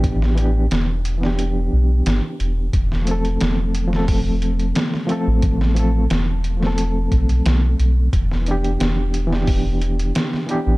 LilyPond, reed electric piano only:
\new Staff \with { instrumentName = "Reed electric piano" } { \time 4/4 \key e \phrygian \tempo 4 = 89 <e b d' g'>8 <e b d' g'>8 r8. <e b d' g'>2~ <e b d' g'>16 | r8 <f a c' a'>4~ <f a c' a'>16 <f a c' a'>4.~ <f a c' a'>16 <f a c' a'>8~ | <f a c' a'>8 <f a c' a'>8 r8. <f a c' a'>2~ <f a c' a'>16 | r8 <e b d' g'>4~ <e b d' g'>16 <e b d' g'>4.~ <e b d' g'>16 <e b d' g'>8 | }